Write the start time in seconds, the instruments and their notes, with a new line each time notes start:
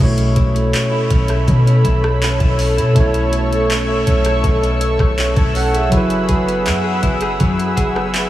Already playing: synth keys B2
0.00 808-style bass B1, clean electric guitar B2, synth keys A3 E4 C#5, analog synth pad A4 C#5 B5 E6
0.18 clean electric guitar C#4, closed hi-hat
0.36 808-style bass B1, clean electric guitar E4, kick, closed hi-hat
0.55 clean electric guitar A3, closed hi-hat
0.73 clean electric guitar C#4, clap, closed hi-hat
0.92 clean electric guitar E4
1.10 808-style bass B1, clean electric guitar C#4, kick, closed hi-hat
1.28 clean electric guitar E4, cross-stick, closed hi-hat
1.48 clean electric guitar B2, 808-style bass B2, kick, closed hi-hat
1.66 clean electric guitar C#4, closed hi-hat
1.85 808-style bass B1, clean electric guitar E4, kick, closed hi-hat
2.03 clean electric guitar A3, cross-stick
2.21 clean electric guitar C#4, clap, closed hi-hat
2.40 808-style bass B1, clean electric guitar E4, kick, closed hi-hat
2.59 clean electric guitar C#4, closed hi-hat, open hi-hat
2.77 808-style bass B2, clean electric guitar E4, closed hi-hat
2.93 808-style bass B1, synth keys B2 A3, clean electric guitar B2, analog synth pad C#6, kick, closed hi-hat
2.98 synth keys E4 C#5
3.14 clean electric guitar C#4, closed hi-hat
3.33 clean electric guitar E4, closed hi-hat
3.51 clean electric guitar A3, closed hi-hat
3.70 clean electric guitar C#4, clap, closed hi-hat
3.88 clean electric guitar E4
4.07 808-style bass B1, clean electric guitar C#4, closed hi-hat
4.25 clean electric guitar E4, cross-stick, closed hi-hat
4.43 808-style bass B1, clean electric guitar B2, kick, closed hi-hat
4.62 clean electric guitar C#4, closed hi-hat
4.81 clean electric guitar E4, closed hi-hat
4.99 808-style bass B1, clean electric guitar A3, kick, cross-stick
5.18 clean electric guitar C#4, clap, closed hi-hat
5.36 808-style bass B1, clean electric guitar E4, synth keys C#5 A5, kick, closed hi-hat
5.55 clean electric guitar C#4, synth keys A4 F#5, closed hi-hat, open hi-hat
5.73 clean electric guitar E4, synth keys G#4 E5, closed hi-hat
5.90 808-style bass F#1, synth keys F#3 E4, clean electric guitar F#3, analog synth pad G#4 F#5 B5, kick, closed hi-hat
5.94 synth keys G#4 B4
6.10 clean electric guitar E4, closed hi-hat
6.28 808-style bass F#1, clean electric guitar G#4, kick, closed hi-hat
6.47 clean electric guitar B3, closed hi-hat
6.66 808-style bass F#2, clean electric guitar E4, clap, closed hi-hat
6.84 clean electric guitar G#4
7.03 808-style bass F#1, clean electric guitar E4, kick, closed hi-hat
7.21 clean electric guitar G#4, cross-stick, closed hi-hat
7.40 808-style bass F#2, clean electric guitar F#3, kick, closed hi-hat
7.58 clean electric guitar E4, closed hi-hat
7.77 808-style bass F#1, clean electric guitar G#4, kick, closed hi-hat
7.95 clean electric guitar B3, cross-stick
8.14 clean electric guitar E4, clap, closed hi-hat